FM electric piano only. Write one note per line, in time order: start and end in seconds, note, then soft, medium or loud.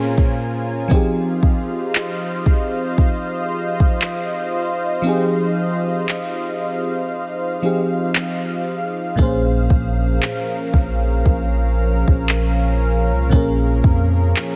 0.00 0.91 A#2 medium
0.00 0.91 A#3 soft
0.00 0.92 C#4 soft
0.00 0.92 G#4 soft
0.00 0.92 C#5 medium
0.88 4.99 F3 medium
0.88 5.00 C4 medium
0.88 5.01 D#4 medium
0.93 5.02 G4 medium
0.93 5.03 G#4 medium
5.02 7.58 F3 medium
5.02 7.59 C4 medium
5.02 7.60 D#4 medium
5.07 7.61 G4 medium
5.07 7.61 G#4 medium
7.62 9.18 F3 medium
7.62 9.18 C4 soft
7.62 9.19 D#4 soft
7.62 9.19 G4 soft
7.62 9.19 G#4 medium
9.16 13.27 A#2 medium
9.16 13.28 A#3 medium
9.16 13.29 C#4 medium
9.21 13.29 G#4 medium
9.21 13.30 C5 medium
13.29 14.56 A#2 medium
13.29 14.56 A#3 medium
13.29 14.56 C#4 medium
13.35 14.56 G#4 medium
13.35 14.56 A#4 medium